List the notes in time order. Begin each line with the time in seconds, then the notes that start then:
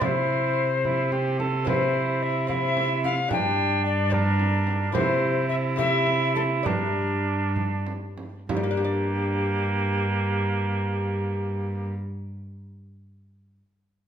0.00 C3 C4 E4 D5, frame drum
0.05 C5
0.85 E4, frame drum
1.12 G4, frame drum
1.39 A4, frame drum
1.65 C4 E4 C5, frame drum
2.22 E5
2.47 C4 E4 F5, frame drum
2.52 E5
2.77 frame drum
3.04 F5, frame drum
3.28 G2 D4 G4 G5, frame drum
3.85 D5
4.10 D4 G4 A#4, frame drum
4.40 frame drum
4.67 frame drum
4.92 C3 E4 G4 C5, frame drum
5.49 E5
5.76 E4 G4 E5, frame drum
6.07 frame drum
6.35 A4, frame drum
6.63 G2 D4 G4 A#4, frame drum
7.56 frame drum
7.87 frame drum
8.18 frame drum
8.49 G2 A#3 G4, frame drum
8.57 G3
8.63 A#3
8.71 D4
8.77 G4
8.84 D5